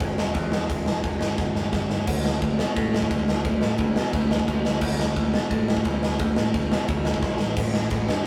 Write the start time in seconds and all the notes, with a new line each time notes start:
0.00 G1, kick, crash
0.18 E1, snare
0.34 E2, kick, crash
0.52 snare
0.70 E1, kick, crash
0.86 E1, snare
1.04 E1, kick, crash
1.21 G1, snare
1.37 G1, kick, snare
1.55 G1, snare
1.72 G1, kick, snare
1.90 G1, snare
2.07 D2, kick, crash
2.25 snare
2.42 D2, kick, ride
2.59 B2, snare
2.76 A2, kick, ride
2.95 snare
3.02 kick
3.10 D2, kick, ride
3.28 snare
3.45 D2, kick, ride
3.62 A2, snare
3.78 D2, kick, ride
3.96 B2, snare
4.13 D2, kick, ride
4.31 snare
4.39 kick
4.48 D2, kick, ride
4.64 D2, snare
4.81 D2, kick, crash
5.00 snare
5.16 D2, kick, ride
5.34 B2, snare
5.50 A2, kick, ride
5.68 snare
5.77 kick
5.85 D2, kick, ride
6.03 snare
6.19 D2, kick, ride
6.37 A2, snare
6.54 D2, kick, ride
6.71 B2, snare
6.88 D2, kick, ride
7.05 snare
7.14 kick
7.22 B1, kick, snare
7.39 A1, snare
7.57 A1, kick, crash
7.74 snare
7.90 A1, kick, ride
8.09 G2, snare